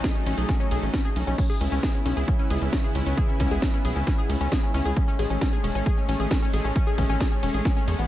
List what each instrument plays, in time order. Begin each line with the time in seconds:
Already playing: analog synth pad F#3 A3 D#4
0.04 synth pluck G#4, kick, snare, closed hi-hat, ride
0.15 synth pluck C#4, closed hi-hat
0.26 analog synth bass A1, synth pluck C#4, open hi-hat, ride
0.38 analog synth bass B1, synth pluck G#4, closed hi-hat
0.49 synth pluck C#4, kick, snare, closed hi-hat, ride
0.60 synth pluck C#4, closed hi-hat
0.71 analog synth bass B1, synth pluck G#4, open hi-hat, ride
0.82 analog synth bass A1, synth pluck C#4, closed hi-hat
0.94 synth pluck C#4, kick, snare, closed hi-hat
1.05 synth pluck G#4, closed hi-hat
1.16 analog synth bass B1, synth pluck C#4, open hi-hat, ride
1.27 analog synth bass B1, synth pluck C#4, closed hi-hat
1.38 analog synth pad C#3 G#3 B3 E4, synth pluck C#4, kick, closed hi-hat, crash, ride
1.50 synth pluck G#4, closed hi-hat
1.61 analog synth bass C#2, synth pluck C#4, open hi-hat, ride
1.72 analog synth bass C#2, synth pluck C#4, closed hi-hat
1.83 synth pluck G#4, kick, snare, closed hi-hat, ride
1.94 synth pluck C#4, closed hi-hat
2.06 analog synth bass B1, synth pluck C#4, open hi-hat, ride
2.17 analog synth bass C#2, synth pluck G#4, closed hi-hat
2.28 synth pluck C#4, kick, closed hi-hat, ride
2.39 synth pluck C#4, closed hi-hat
2.50 analog synth bass C#2, synth pluck G#4, open hi-hat, ride
2.62 analog synth bass C#2, synth pluck C#4, closed hi-hat
2.73 synth pluck C#4, kick, snare, closed hi-hat, ride
2.84 synth pluck G#4, closed hi-hat
2.95 analog synth bass C#2, synth pluck C#4, open hi-hat, ride
3.06 analog synth bass C#2, synth pluck C#4, closed hi-hat
3.17 synth pluck G#4, kick, closed hi-hat, ride
3.29 synth pluck C#4, closed hi-hat
3.40 analog synth bass C#2, synth pluck C#4, kick, open hi-hat, ride
3.51 analog synth bass C#2, synth pluck G#4, closed hi-hat
3.62 synth pluck C#4, kick, snare, closed hi-hat, ride
3.74 synth pluck C#4, closed hi-hat
3.85 analog synth bass B1, synth pluck G#4, open hi-hat, ride
3.96 analog synth bass C#2, synth pluck C#4, closed hi-hat
4.07 synth pluck C#4, kick, snare, closed hi-hat, ride
4.18 synth pluck G#4, closed hi-hat
4.29 analog synth bass C#2, synth pluck C#4, open hi-hat, ride
4.41 analog synth bass C#2, synth pluck C#4, closed hi-hat
4.52 synth pluck G#4, kick, snare, closed hi-hat, ride
4.63 synth pluck C#4, closed hi-hat
4.74 analog synth bass C#2, synth pluck C#4, open hi-hat, ride
4.85 analog synth bass C#2, synth pluck G#4, closed hi-hat
4.96 analog synth pad A3 C#4, synth pluck C#4, kick, closed hi-hat, ride
5.08 synth pluck C#4, closed hi-hat
5.19 analog synth bass A1, synth pluck G#4, open hi-hat, ride
5.30 analog synth bass A1, synth pluck C#4, closed hi-hat
5.41 synth pluck C#4, kick, snare, closed hi-hat, ride
5.53 synth pluck G#4, closed hi-hat
5.64 analog synth bass E1, synth pluck C#4, open hi-hat, ride
5.75 analog synth bass A1, synth pluck C#4, closed hi-hat
5.86 synth pluck G#4, kick, closed hi-hat, ride
5.98 synth pluck C#4, closed hi-hat
6.09 analog synth bass A1, synth pluck C#4, open hi-hat, ride
6.20 analog synth bass A1, synth pluck G#4, closed hi-hat
6.31 synth pluck C#4, kick, snare, closed hi-hat, ride
6.42 synth pluck C#4, closed hi-hat
6.53 analog synth bass A1, synth pluck G#4, open hi-hat, ride
6.64 analog synth bass A1, synth pluck C#4, closed hi-hat
6.76 synth pluck C#4, kick, closed hi-hat, ride
6.87 synth pluck G#4, closed hi-hat
6.98 analog synth bass A1, synth pluck C#4, kick, open hi-hat, ride
7.09 analog synth bass A1, synth pluck C#4, closed hi-hat
7.20 synth pluck G#4, kick, snare, closed hi-hat, ride
7.32 synth pluck C#4, closed hi-hat
7.43 analog synth bass E1, synth pluck C#4, open hi-hat, ride
7.54 analog synth bass A1, synth pluck G#4, closed hi-hat
7.65 synth pluck C#4, kick, snare, closed hi-hat, ride
7.77 synth pluck C#4, closed hi-hat
7.88 analog synth bass E2, synth pluck C#5, open hi-hat, ride
7.99 analog synth bass A1, synth pluck B3, closed hi-hat